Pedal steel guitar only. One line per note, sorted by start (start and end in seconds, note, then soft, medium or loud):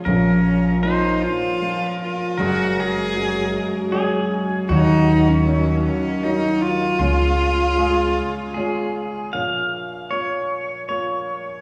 0.05 0.83 A#4 medium
0.83 1.89 C5 loud
1.89 2.37 A#4 loud
2.38 3.88 A#4 medium
3.92 4.65 G#4 medium
4.69 7.07 F#4 medium
6.99 8.60 F4 medium
8.54 9.29 G#4 medium
9.33 10.07 F5 medium
10.11 10.88 C#5 medium
10.89 11.61 C#5 medium